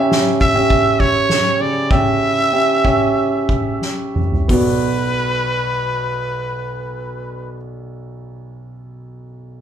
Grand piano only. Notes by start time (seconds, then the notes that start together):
Already playing: C#3 C#4 G4 E5
0.55 C#4 G4 E5
1.60 C#3
1.91 C#4 G4 G5
2.52 C#4 G4 E5
2.84 C#4 G4 E5
4.48 B1 B3 F#4
4.52 D5